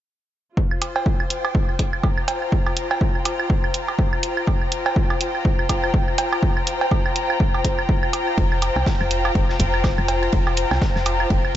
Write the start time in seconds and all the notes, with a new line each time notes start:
0.57 F4, kick
0.71 C5, claves
0.82 closed hi-hat, cowbell
0.96 cowbell, claves
1.06 kick
1.20 claves
1.30 G5, closed hi-hat
1.45 cowbell, claves
1.55 kick
1.69 claves
1.79 kick, closed hi-hat
1.93 claves
2.01 A#5, kick, cowbell
2.18 claves
2.28 closed hi-hat, cowbell
2.42 claves
2.52 kick
2.67 cowbell, claves
2.77 closed hi-hat
2.91 cowbell, claves
3.01 kick
3.15 claves
3.25 closed hi-hat, cowbell
3.40 claves
3.50 kick
3.64 claves
3.74 closed hi-hat
3.88 cowbell, claves
3.99 kick
4.13 claves
4.23 closed hi-hat
4.37 claves
4.47 kick, cowbell
4.62 claves
4.72 closed hi-hat
4.86 cowbell, claves
4.96 kick
5.10 cowbell, claves
5.21 closed hi-hat
5.35 claves
5.45 kick
5.59 claves
5.69 kick, closed hi-hat, cowbell
5.84 claves
5.94 kick
6.08 claves
6.18 closed hi-hat, cowbell
6.33 cowbell, claves
6.43 kick
6.57 claves
6.67 closed hi-hat
6.81 cowbell, claves
6.91 kick, cowbell
7.06 claves
7.16 closed hi-hat
7.30 claves
7.40 kick
7.54 cowbell, claves
7.65 kick, closed hi-hat
7.79 claves
7.89 kick
8.03 claves
8.13 closed hi-hat, cowbell
8.28 claves
8.38 F1, kick, ride
8.52 claves
8.62 closed hi-hat, ride, cowbell
8.76 C2, cowbell, claves
8.86 kick, snare, ride
9.01 F1, claves
9.11 closed hi-hat, ride
9.25 cowbell, claves
9.35 F1, kick, ride
9.49 snare, claves
9.60 F1, kick, closed hi-hat, ride
9.74 claves
9.84 kick, snare, ride, cowbell
9.98 F1, claves
10.08 closed hi-hat, ride, cowbell
10.22 ride, claves
10.32 F1, kick, ride
10.47 cowbell, claves
10.57 closed hi-hat, ride
10.71 C2, snare, cowbell, claves
10.82 kick, snare, ride
10.96 F1, snare, claves
11.06 closed hi-hat, ride, cowbell
11.20 claves
11.30 F1, kick, ride
11.45 claves